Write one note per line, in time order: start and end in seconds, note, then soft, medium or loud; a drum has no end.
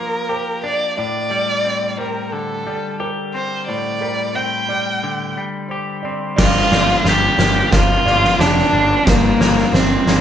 0.00 0.98 F3 soft
0.00 0.97 A#3 soft
0.00 0.63 D4 soft
0.00 0.63 A#4 medium
0.29 1.01 G4 soft
0.29 0.64 C5 medium
0.63 1.64 D4 soft
0.63 0.96 D5 medium
0.97 2.67 A2 medium
0.97 1.29 D5 medium
0.97 1.96 D5 medium
1.30 1.98 G3 soft
1.30 1.99 D5 soft
1.65 3.33 C4 soft
1.98 2.66 G3 soft
1.98 2.33 A#4 soft
1.98 2.66 C5 medium
2.31 4.02 D3 soft
2.31 3.00 A4 medium
2.66 4.01 G3 soft
2.66 3.01 D5 medium
3.00 4.69 G4 medium
3.00 3.68 A#4 medium
3.34 4.34 C4 soft
3.34 3.66 C5 medium
3.68 5.38 A2 medium
3.68 4.02 C5 medium
3.68 4.37 D5 medium
4.01 4.69 G3 soft
4.01 4.35 A#4 medium
4.35 6.04 C4 soft
4.35 4.69 C5 medium
4.35 5.37 G5 medium
4.69 5.36 G3 soft
4.69 5.37 D5 medium
5.03 6.38 D3 soft
5.37 6.38 G3 soft
5.69 6.38 G4 medium
5.69 6.04 C5 medium
6.03 6.39 C4 soft
6.03 6.35 D5 medium
6.36 6.61 G1 medium
6.36 8.06 G2 medium
6.36 10.21 F4 medium
6.36 6.70 D5 medium
6.36 10.21 D5 soft
6.36 9.04 G5 medium
6.36 10.21 A#5 medium
6.36 kick medium
6.36 snare loud
6.36 crash medium
6.41 7.10 F4 medium
6.71 6.94 G1 medium
6.71 7.39 A#3 medium
6.71 7.39 D5 medium
6.71 snare medium
6.88 snare soft
7.05 7.28 G1 medium
7.05 8.72 D4 medium
7.05 7.74 G4 medium
7.05 snare medium
7.38 7.61 G1 medium
7.38 8.06 A#3 medium
7.38 8.06 C5 medium
7.38 snare medium
7.72 7.95 G1 medium
7.72 10.21 F3 medium
7.72 8.42 F4 medium
7.72 kick medium
7.72 snare medium
8.06 8.29 G1 medium
8.06 9.40 A#3 medium
8.06 8.40 D5 medium
8.06 snare soft
8.25 snare soft
8.39 8.62 F1 medium
8.39 9.10 D4 medium
8.39 10.07 G4 medium
8.39 9.07 A#4 medium
8.39 snare medium
8.58 snare soft
8.73 8.96 G1 medium
8.73 9.74 D4 medium
9.06 9.30 G1 medium
9.06 10.21 G2 medium
9.06 9.75 A#3 medium
9.06 9.40 C5 medium
9.06 10.21 F5 medium
9.06 kick loud
9.06 snare loud
9.39 9.62 G1 medium
9.39 10.08 A#3 medium
9.39 9.73 A#4 medium
9.39 snare medium
9.57 snare soft
9.72 9.96 G1 medium
9.72 10.21 C4 medium
9.72 10.21 D4 medium
9.72 10.07 C5 medium
9.72 snare medium
10.06 10.21 G1 medium
10.06 10.21 A#3 medium
10.06 10.21 D5 medium
10.06 snare medium